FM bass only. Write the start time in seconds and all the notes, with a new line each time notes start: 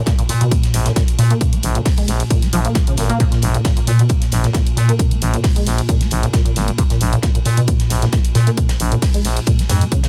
0.29 A#2
0.74 A#1
1.19 A#2
1.63 A#1
2.08 A#1
2.53 A#1
2.98 G#1
3.42 A#1
3.87 A#2
4.32 A#1
4.77 A#2
5.22 A#1
5.66 A#1
6.11 A#1
6.56 G#1
7.01 A#1
7.45 A#2
7.90 A#1
8.35 A#2
8.80 A#1
9.25 A#1
9.69 F2